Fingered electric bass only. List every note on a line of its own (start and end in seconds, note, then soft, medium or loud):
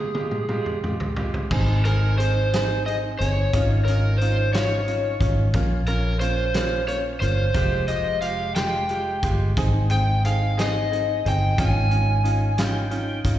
1.52 3.16 G#1 loud
3.20 3.51 G1 medium
3.54 5.17 G#1 loud
5.21 5.52 G#1 loud
5.54 7.17 A#1 loud
7.22 7.53 G1 medium
7.55 9.20 F1 loud
9.23 9.55 G1 medium
9.57 11.21 G#1 loud
11.26 11.57 G1 medium
11.59 13.21 G#1 loud
13.25 13.39 G#1 medium